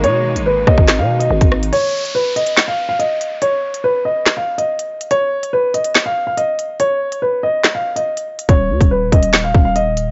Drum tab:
HH |x--x----x--x-x-x|x--x--xx----x-x-|x--x----x--x-x-x|x--x--xx----x-x-|
CP |--------x-------|--------x-------|--------x-------|--------x-------|
SD |------r-o-----r-|--------o-------|--------o-------|--------o-------|
BD |------oo-----o--|----------------|----------------|----------------|

HH |x--x----x--x-x-x|x--x--xx----x-x-|
CP |--------x-------|--------x-------|
SD |--------o-------|--------o-------|
BD |----------------|o--o--o---o-----|